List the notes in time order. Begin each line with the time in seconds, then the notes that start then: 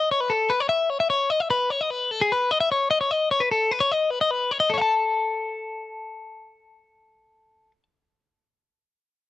Already playing: D#5
0.11 C#5
0.20 B4
0.30 A4
0.50 B4
0.60 C#5
0.69 E5
0.90 C#5
1.00 E5
1.10 C#5
1.30 D#5
1.40 E5
1.50 B4
1.70 C#5
1.81 D#5
1.90 B4
2.11 A4
2.21 G#4
2.32 B4
2.51 D#5
2.60 E5
2.72 C#5
2.91 D#5
3.01 C#5
3.11 D#5
3.31 C#5
3.40 B4
3.51 A4
3.71 B4
3.80 C#5
3.92 D#5
4.10 B4
4.21 D#5
4.31 B4
4.51 C#5
4.60 D#5
4.70 A4
4.74 C#5
4.78 E5 A5